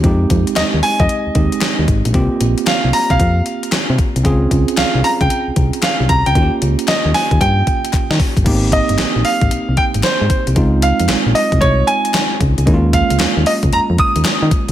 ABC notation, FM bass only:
X:1
M:4/4
L:1/16
Q:"Swing 16ths" 1/4=114
K:Ab
V:1 name="FM bass" clef=bass
F,,2 F,, z E,, E,, z F,, z E,, E,, z2 E,, A,,, B,,, | C,, z B,,, z2 C,, z C,, F,,2 z3 C, z C,, | D,,2 D,, z C,, C,, z D,, z C,, C,, z2 C,, C,, D,, | E,, z D,, z2 E,, z E,, G,,2 z3 E, z G,,, |
A,,,3 G,,, B,,, B,,, z A,,, C,, C,, z A,,, z A,, z C,, | D,,3 F,, B,,, B,,, z C,, C,,2 z4 D,, D,, | E,,3 D,, z E,, z D,, F,, F,, z E,, z E, z D,, |]